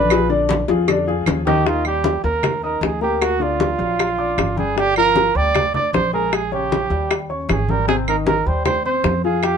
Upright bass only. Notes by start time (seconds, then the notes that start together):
Already playing: A#1
0.69 F2
1.26 D#2
2.24 D#2
2.82 D2
3.79 A#1
4.38 G1
5.35 D2
5.93 A#1
6.90 D#2
7.50 G#1
8.46 D#2
9.04 F2